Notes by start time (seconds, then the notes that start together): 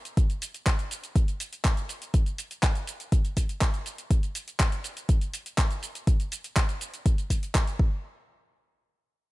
0.05 closed hi-hat, shaker
0.17 kick, closed hi-hat, shaker
0.30 closed hi-hat, shaker
0.42 open hi-hat, shaker
0.54 closed hi-hat, shaker
0.66 kick, clap, closed hi-hat, shaker
0.79 closed hi-hat, shaker
0.91 open hi-hat, shaker
1.04 closed hi-hat, shaker
1.16 kick, closed hi-hat, shaker
1.28 closed hi-hat, shaker
1.40 open hi-hat, shaker
1.53 closed hi-hat, shaker
1.65 kick, clap, closed hi-hat, shaker
1.77 closed hi-hat, shaker
1.89 open hi-hat, shaker
2.02 closed hi-hat, shaker
2.14 kick, closed hi-hat, shaker
2.26 closed hi-hat, shaker
2.38 open hi-hat, shaker
2.51 closed hi-hat, shaker
2.63 kick, clap, closed hi-hat, shaker
2.75 closed hi-hat, shaker
2.87 open hi-hat, shaker
3.00 closed hi-hat, shaker
3.12 kick, closed hi-hat, shaker
3.25 closed hi-hat, shaker
3.37 kick, open hi-hat, shaker
3.49 closed hi-hat, shaker
3.61 kick, clap, closed hi-hat, shaker
3.74 closed hi-hat, shaker
3.86 open hi-hat, shaker
3.98 closed hi-hat, shaker
4.11 kick, closed hi-hat, shaker
4.23 closed hi-hat, shaker
4.35 open hi-hat, shaker
4.48 closed hi-hat, shaker
4.60 kick, clap, closed hi-hat, shaker
4.72 closed hi-hat, shaker
4.84 open hi-hat, shaker
4.97 closed hi-hat, shaker
5.09 kick, closed hi-hat, shaker
5.21 closed hi-hat, shaker
5.34 open hi-hat, shaker
5.46 closed hi-hat, shaker
5.58 kick, clap, closed hi-hat, shaker
5.71 closed hi-hat, shaker
5.83 open hi-hat, shaker
5.95 closed hi-hat, shaker
6.07 kick, closed hi-hat, shaker
6.20 closed hi-hat, shaker
6.32 open hi-hat, shaker
6.44 closed hi-hat, shaker
6.56 kick, clap, closed hi-hat, shaker
6.69 closed hi-hat, shaker
6.81 open hi-hat, shaker
6.94 closed hi-hat, shaker
7.06 kick, closed hi-hat, shaker
7.18 closed hi-hat, shaker
7.30 kick, open hi-hat, shaker
7.43 closed hi-hat, shaker
7.55 kick, clap, closed hi-hat, shaker
7.67 closed hi-hat, shaker
7.79 kick